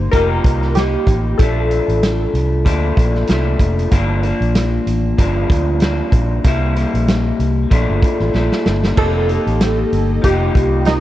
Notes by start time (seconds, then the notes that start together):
Already playing: A#3 D#4 G4 C5
0.11 F1 F3 A#3 D#4 G4 A#4, kick, closed hi-hat
0.44 C2, kick, closed hi-hat
0.62 snare
0.75 F3 A#3 D#4 G4, snare, closed hi-hat
1.07 A1, kick, closed hi-hat
1.38 A#1 F3 A3 A4, kick, closed hi-hat
1.42 D4
1.71 closed hi-hat
1.88 A1, closed hi-hat
2.03 snare, closed hi-hat
2.34 C2, closed hi-hat
2.65 D2 A#2 F3 A3 D4, kick, closed hi-hat
2.97 A#1, kick, closed hi-hat
3.15 snare
3.27 C2 A#2 F3 A3 D4, snare, closed hi-hat
3.59 F1, kick, closed hi-hat
3.79 closed hi-hat
3.91 G1 G2 F3 A#3 D4, kick, closed hi-hat
4.23 F3 A#3 D4, closed hi-hat
4.41 A#1, closed hi-hat
4.55 snare, closed hi-hat
4.87 A1, closed hi-hat
5.18 G1 G2 F3 A#3 D4, kick, closed hi-hat
5.50 D2, kick, closed hi-hat
5.80 G2 F3 A#3 D4, snare, closed hi-hat
6.12 A#1, kick, closed hi-hat
6.44 C2 C3 G3 A#3 E4, kick, closed hi-hat
6.76 G3 A#3 E4, closed hi-hat
6.94 A#1, closed hi-hat
7.08 snare, closed hi-hat
7.39 C2, closed hi-hat
7.70 A#1 A#2 F3 A3 D4, kick, closed hi-hat
7.89 G1
8.02 kick, closed hi-hat
8.20 A1, snare
8.33 A#1 A#2 F3 A3 D4, snare
8.52 snare
8.66 G1, snare
8.84 snare
8.95 F1 F3 A#3 C4 D#4 G4 A4 D#5 G5, kick, crash
9.00 G4
9.28 A#3 D#4 G4, closed hi-hat
9.47 A1, closed hi-hat
9.61 snare, closed hi-hat
9.92 G1, closed hi-hat
10.22 F1 F3 A#3 D#4 G4, kick, closed hi-hat
10.26 G4
10.55 C2, kick, closed hi-hat
10.85 A#3 C4 D#4 G4, snare, closed hi-hat